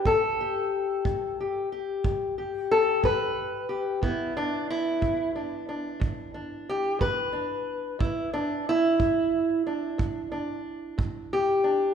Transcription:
0.00 4.01 E3 soft
0.05 0.66 A2 medium
0.05 2.70 A4 medium
0.05 kick medium
0.41 1.39 G4 soft
1.05 1.65 A2 medium
1.05 kick medium
1.41 1.71 G4 soft
1.72 2.37 G4 soft
2.04 2.64 A2 medium
2.04 kick medium
2.38 3.68 G4 soft
2.71 3.04 A4 loud
3.03 3.63 A2 medium
3.03 4.04 B4 medium
3.03 kick medium
3.69 3.99 G4 soft
4.02 4.62 E2 medium
4.02 11.94 E3 soft
4.02 7.96 B3 soft
4.02 4.36 E4 medium
4.02 kick medium
4.37 4.70 D4 medium
4.70 5.35 E4 medium
5.01 5.61 E2 medium
5.01 kick medium
5.36 5.68 D4 soft
5.69 6.33 D4 soft
6.00 6.60 E2 medium
6.00 kick medium
6.34 7.31 D4 soft
6.70 7.01 G4 medium
6.99 7.60 E2 medium
6.99 8.67 B4 medium
6.99 kick medium
7.33 7.96 D4 soft
7.99 8.59 E2 medium
7.99 8.33 E4 medium
7.99 kick medium
8.34 8.67 D4 medium
8.69 9.66 E4 loud
9.00 9.59 E2 medium
9.00 kick medium
9.67 10.30 D4 soft
9.98 10.58 E2 medium
9.98 kick medium
10.32 11.63 D4 soft
10.98 11.58 E2 medium
10.98 kick medium
11.33 11.94 G4 medium
11.64 11.94 D4 soft

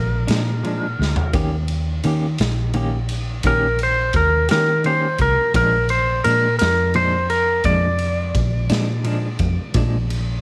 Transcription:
0.00 0.26 A#1 medium
0.00 1.31 A#4 loud
0.27 0.95 A#2 medium
0.27 0.50 F3 soft
0.27 0.50 G#3 medium
0.27 0.49 D4 medium
0.27 snare loud
0.27 ride medium
0.63 0.85 A#2 medium
0.63 0.85 F3 medium
0.63 0.86 G#3 medium
0.63 0.86 D4 medium
0.63 ride medium
0.99 1.15 D2 medium
0.99 snare medium
1.16 floor tom medium
1.33 2.00 D#2 medium
1.33 1.55 D#3 medium
1.33 1.55 A#3 medium
1.33 1.55 C#4 medium
1.33 1.55 G4 medium
1.33 kick loud
1.33 ride medium
1.68 ride medium
2.04 2.25 D#3 medium
2.04 2.37 D#3 medium
2.04 2.25 A#3 medium
2.04 2.26 C#4 medium
2.04 2.26 G4 medium
2.04 ride medium
2.38 3.41 A#1 loud
2.38 snare loud
2.38 ride medium
2.74 2.95 D#3 medium
2.74 2.95 A#3 medium
2.74 2.96 C#4 medium
2.74 2.96 G4 medium
2.74 ride medium
3.09 ride medium
3.43 4.10 A#1 medium
3.43 3.66 D#3 medium
3.43 3.66 A#3 medium
3.43 3.66 C#4 medium
3.43 3.80 A#4 medium
3.43 kick medium
3.43 ride medium
3.47 3.67 G4 medium
3.79 ride medium
3.83 4.15 C5 medium
4.13 4.47 D#2 medium
4.13 4.49 A#4 medium
4.13 kick medium
4.13 ride medium
4.49 5.17 D#3 medium
4.49 4.71 A#3 soft
4.49 4.71 C#4 soft
4.49 4.70 G4 medium
4.49 4.84 A#4 medium
4.49 snare loud
4.49 ride medium
4.84 5.06 D#3 medium
4.84 5.06 A#3 medium
4.84 5.06 C#4 medium
4.84 5.07 G4 medium
4.84 5.19 C5 medium
4.84 ride medium
5.18 5.36 C2 medium
5.18 5.55 A#4 medium
5.18 kick medium
5.18 ride medium
5.54 6.21 A#1 medium
5.54 5.76 A#2 medium
5.54 5.76 F3 medium
5.54 5.76 G#3 medium
5.54 5.77 D4 medium
5.54 5.89 A#4 medium
5.54 kick loud
5.54 ride medium
5.89 6.24 C5 medium
5.89 ride medium
6.24 6.46 A#2 medium
6.24 6.58 A#2 medium
6.24 6.46 F3 soft
6.24 6.46 G#3 medium
6.24 6.47 D4 medium
6.24 6.57 A#4 medium
6.24 ride medium
6.59 7.62 F2 loud
6.59 6.93 A#4 medium
6.59 snare medium
6.59 ride medium
6.94 7.16 A#2 medium
6.94 7.16 F3 medium
6.94 7.17 G#3 medium
6.94 7.17 D4 medium
6.94 7.29 C5 loud
6.94 ride medium
7.30 7.64 A#4 medium
7.30 ride medium
7.64 8.31 F2 medium
7.64 7.86 A#2 medium
7.64 7.87 F3 medium
7.64 7.87 G#3 medium
7.64 7.87 D4 medium
7.64 9.72 D5 loud
7.64 kick medium
7.64 ride medium
7.99 ride soft
8.35 8.68 A#1 medium
8.35 kick medium
8.35 ride medium
8.70 9.36 A#2 medium
8.70 8.92 F3 soft
8.70 8.92 G#3 medium
8.70 8.91 D4 medium
8.70 snare medium
8.70 ride medium
9.04 9.26 A#2 medium
9.04 9.26 F3 medium
9.04 9.27 G#3 medium
9.04 9.27 D4 medium
9.04 ride medium
9.39 9.56 F2 medium
9.39 kick medium
9.39 ride medium
9.74 10.41 A#1 medium
9.74 9.96 A#2 medium
9.74 9.97 F3 medium
9.74 9.97 G#3 medium
9.74 9.97 D4 medium
9.74 kick loud
9.74 ride medium
10.10 ride medium

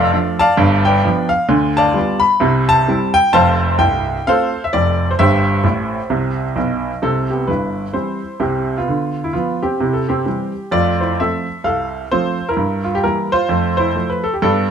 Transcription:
0.00 0.14 F1 medium
0.00 0.14 F2 loud
0.00 0.37 A4 medium
0.00 0.37 D5 medium
0.00 0.39 F5 medium
0.13 0.38 F3 soft
0.13 0.38 A3 soft
0.13 0.39 D4 soft
0.39 0.83 D5 medium
0.39 0.83 F5 medium
0.39 0.85 A5 loud
0.57 0.97 G1 medium
0.57 0.97 G2 medium
0.85 1.29 B4 medium
0.85 1.29 D5 medium
0.85 1.31 G5 medium
1.04 1.29 F3 medium
1.04 1.29 B3 medium
1.04 1.30 D4 medium
1.29 1.49 F5 medium
1.49 1.88 D2 medium
1.49 1.88 D3 medium
1.77 2.20 D5 medium
1.77 2.20 F5 medium
1.77 2.23 A5 loud
1.94 2.20 G3 soft
1.94 2.20 B3 soft
1.94 2.20 F4 medium
2.20 2.67 B5 loud
2.40 2.80 C2 medium
2.40 2.80 C3 medium
2.69 3.15 A5 loud
2.88 3.13 G3 medium
2.88 3.13 C4 soft
2.88 3.14 E4 medium
3.14 3.33 G5 loud
3.33 3.70 F1 medium
3.33 3.70 F2 medium
3.33 3.77 C5 medium
3.33 3.77 F5 medium
3.33 3.79 A5 loud
3.78 4.16 C1 medium
3.78 4.16 C2 medium
3.78 4.25 G5 medium
4.27 4.53 A3 soft
4.27 4.53 C4 soft
4.27 4.52 F4 soft
4.27 4.61 A4 medium
4.27 4.62 C5 medium
4.27 4.63 F5 medium
4.64 4.73 E5 medium
4.73 5.10 F1 medium
4.73 5.10 F2 medium
4.73 5.09 D5 medium
5.11 5.19 C5 medium
5.19 5.57 G1 medium
5.19 5.58 G2 medium
5.19 6.53 G4 medium
5.19 6.53 C5 medium
5.19 6.57 E5 loud
5.63 5.99 A1 medium
5.63 5.98 A2 medium
6.10 6.45 C2 medium
6.10 6.45 C3 medium
6.56 6.91 B1 medium
6.56 6.91 B2 medium
7.02 7.39 C2 soft
7.02 7.39 C3 medium
7.02 7.29 C4 medium
7.02 7.30 A4 medium
7.30 7.48 B3 soft
7.30 7.49 G4 soft
7.47 7.85 G1 soft
7.47 7.85 G2 soft
7.47 7.92 E4 soft
7.47 7.94 B4 medium
7.93 8.19 E3 soft
7.93 8.20 G3 soft
7.93 8.20 C4 soft
7.93 8.38 E4 soft
7.93 8.40 C5 medium
8.40 8.77 C2 medium
8.40 8.77 C3 medium
8.40 8.75 C4 soft
8.40 8.77 G4 medium
8.78 9.21 B3 soft
8.78 9.24 F4 medium
8.88 9.27 D3 medium
9.24 9.33 E4 medium
9.33 9.59 F3 soft
9.33 9.60 B3 soft
9.33 9.61 F4 medium
9.62 9.92 C4 soft
9.62 9.94 G4 medium
9.80 10.19 C3 medium
9.80 10.08 E4 soft
9.93 10.07 A4 medium
10.08 10.25 C4 medium
10.08 10.73 G4 medium
10.25 10.51 E3 soft
10.25 10.52 G3 soft
10.25 10.51 C4 soft
10.71 11.11 F2 medium
10.71 10.99 A3 soft
10.71 10.98 F4 medium
10.71 11.00 D5 medium
11.01 11.18 E4 soft
11.01 11.19 C5 medium
11.20 11.46 F3 soft
11.20 11.46 A3 soft
11.20 11.46 C4 soft
11.20 11.63 A4 medium
11.20 11.65 E5 medium
11.64 12.03 C2 medium
11.64 12.08 A4 medium
11.64 12.11 F5 medium
12.12 12.37 F3 soft
12.12 12.37 A3 soft
12.12 12.37 C4 soft
12.12 12.46 F4 medium
12.12 12.48 C5 medium
12.49 12.83 E4 medium
12.49 12.85 A#4 medium
12.57 12.96 G2 medium
12.84 12.94 F4 medium
12.95 13.04 G4 medium
13.04 13.29 E3 soft
13.04 13.29 G3 soft
13.04 13.29 A#3 soft
13.04 13.30 E4 soft
13.04 13.31 A#4 medium
13.32 13.75 F4 medium
13.32 13.76 C5 medium
13.49 13.88 F2 medium
13.49 13.76 A3 soft
13.77 14.08 E4 medium
13.77 14.09 C5 medium
13.95 14.21 F3 soft
13.95 14.21 A3 soft
14.10 14.23 B4 medium
14.24 14.32 A4 medium
14.33 14.42 G4 medium
14.42 14.71 G2 medium
14.42 14.69 B3 soft
14.42 14.68 D4 medium
14.42 14.69 A4 medium

